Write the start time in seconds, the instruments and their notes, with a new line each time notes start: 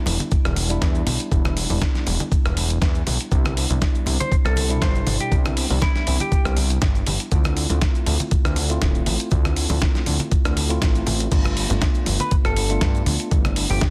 Already playing: tine electric piano G3 B3 D4 E4
0.06 analog synth bass E1, open hi-hat, low conga
0.20 closed hi-hat, high conga, maracas
0.31 analog synth bass E1, kick, closed hi-hat, maracas
0.45 analog synth bass E1, cross-stick, closed hi-hat, maracas
0.56 open hi-hat, high conga
0.69 tine electric piano G3 B3 D4 E4, closed hi-hat, maracas
0.82 analog synth bass E2, kick, snare, closed hi-hat, maracas
0.95 closed hi-hat, maracas
1.07 analog synth bass B1, open hi-hat, high conga, low conga
1.20 closed hi-hat, maracas
1.31 analog synth bass E1, tine electric piano G3 B3 D4 E4, kick, closed hi-hat, maracas
1.45 cross-stick, closed hi-hat, high conga, maracas
1.57 open hi-hat
1.69 analog synth bass E1, tine electric piano G3 B3 D4 E4, open hi-hat, low conga, maracas
1.81 kick, snare, closed hi-hat, high conga, maracas
1.95 snare, closed hi-hat, maracas
2.06 analog synth bass E1, open hi-hat, low conga
2.20 closed hi-hat, high conga, maracas
2.32 kick, closed hi-hat, maracas
2.45 analog synth bass E1, cross-stick, closed hi-hat, maracas
2.57 open hi-hat, high conga
2.70 closed hi-hat, maracas
2.82 analog synth bass E2, kick, snare, closed hi-hat, maracas
2.95 closed hi-hat, maracas
3.07 analog synth bass B1, open hi-hat, high conga, low conga
3.20 closed hi-hat, maracas
3.31 analog synth bass C2, tine electric piano G3 B3 D4 E4, kick, closed hi-hat, maracas
3.45 cross-stick, closed hi-hat, high conga, maracas
3.57 open hi-hat
3.69 analog synth bass C2, tine electric piano G3 B3 D4 E4, closed hi-hat, low conga, maracas
3.81 kick, snare, closed hi-hat, high conga, maracas
3.95 closed hi-hat, maracas
4.06 analog synth bass C2, open hi-hat, low conga
4.20 clean electric guitar C5, closed hi-hat, high conga, maracas
4.32 analog synth bass C2, kick, closed hi-hat, maracas
4.45 analog synth bass C2, clean electric guitar A4, cross-stick, closed hi-hat, maracas
4.56 open hi-hat, high conga
4.69 tine electric piano B2 G3 D4 E4, closed hi-hat, maracas
4.82 analog synth bass G1, clean electric guitar C5, kick, snare, closed hi-hat, maracas
4.95 closed hi-hat, maracas
5.07 analog synth bass G1, open hi-hat, high conga, low conga
5.20 clean electric guitar G4, closed hi-hat, maracas
5.31 analog synth bass C2, tine electric piano G3 B3 D4 E4, kick, closed hi-hat, maracas
5.45 cross-stick, closed hi-hat, high conga, maracas
5.57 open hi-hat
5.69 analog synth bass C2, tine electric piano G3 B3 D4 E4, open hi-hat, low conga, maracas
5.82 clean electric guitar E4, kick, snare, closed hi-hat, high conga, maracas
5.96 snare, closed hi-hat, maracas
6.07 analog synth bass C2, open hi-hat, low conga
6.20 clean electric guitar G4, closed hi-hat, high conga, maracas
6.32 kick, closed hi-hat, maracas
6.45 analog synth bass C2, cross-stick, closed hi-hat, maracas
6.57 open hi-hat, high conga
6.70 closed hi-hat, maracas
6.82 kick, snare, closed hi-hat, maracas
6.95 closed hi-hat, maracas
7.07 analog synth bass G1, open hi-hat, high conga, low conga
7.20 closed hi-hat, maracas
7.31 analog synth bass D2, tine electric piano A3 C4 E4 F4, kick, closed hi-hat, maracas
7.44 cross-stick, closed hi-hat, high conga, maracas
7.57 open hi-hat
7.69 analog synth bass D2, tine electric piano A3 C4 E4 F4, closed hi-hat, low conga, maracas
7.81 kick, snare, closed hi-hat, high conga, maracas
7.95 closed hi-hat, maracas
8.06 analog synth bass D2, open hi-hat, low conga
8.20 closed hi-hat, high conga, maracas
8.31 analog synth bass D2, kick, closed hi-hat, maracas
8.45 analog synth bass D2, cross-stick, closed hi-hat, maracas
8.56 open hi-hat, high conga
8.69 tine electric piano A3 C4 E4 F4, closed hi-hat, maracas
8.82 analog synth bass D1, kick, snare, closed hi-hat, maracas
8.95 closed hi-hat, maracas
9.06 analog synth bass A1, open hi-hat, high conga, low conga
9.20 closed hi-hat, maracas
9.31 analog synth bass D2, tine electric piano A3 C4 E4 F4, kick, closed hi-hat, maracas
9.45 cross-stick, closed hi-hat, high conga, maracas
9.56 open hi-hat
9.69 analog synth bass D2, tine electric piano A3 C4 E4 F4, open hi-hat, low conga, maracas
9.80 kick, snare, closed hi-hat, high conga, maracas
9.95 snare, closed hi-hat, maracas
10.06 analog synth bass D2, open hi-hat, low conga
10.19 closed hi-hat, high conga, maracas
10.31 kick, closed hi-hat, maracas
10.45 analog synth bass D2, cross-stick, closed hi-hat, maracas
10.57 open hi-hat, high conga
10.69 tine electric piano A3 C4 E4 F4, closed hi-hat, maracas
10.82 analog synth bass A1, kick, snare, closed hi-hat, maracas
10.95 closed hi-hat, maracas
11.06 analog synth bass A1, open hi-hat, high conga, low conga
11.20 closed hi-hat, maracas
11.31 analog synth bass G1, tine electric piano A3 B3 D4 F4, kick, closed hi-hat, crash, maracas
11.44 cross-stick, closed hi-hat, high conga, maracas
11.57 open hi-hat
11.69 analog synth bass G1, tine electric piano A3 B3 D4 F4, closed hi-hat, low conga, maracas
11.81 kick, snare, closed hi-hat, high conga, maracas
11.94 closed hi-hat, maracas
12.06 analog synth bass G1, open hi-hat, low conga
12.20 clean electric guitar B4, closed hi-hat, high conga, maracas
12.31 analog synth bass G1, kick, closed hi-hat, maracas
12.45 analog synth bass G1, clean electric guitar A4, cross-stick, closed hi-hat, maracas
12.56 open hi-hat, high conga
12.69 tine electric piano A3 B3 D4 F4, closed hi-hat, maracas
12.81 analog synth bass G2, kick, snare, closed hi-hat, maracas
12.95 closed hi-hat, maracas
13.06 analog synth bass D2, open hi-hat, high conga, low conga
13.20 closed hi-hat, maracas
13.31 analog synth bass G1, tine electric piano A3 B3 D4 E4, kick, closed hi-hat, maracas
13.45 cross-stick, closed hi-hat, high conga, maracas
13.56 open hi-hat
13.69 analog synth bass G1, tine electric piano A3 B3 D4 F4, clean electric guitar G4, open hi-hat, low conga, maracas
13.81 kick, snare, closed hi-hat, high conga, maracas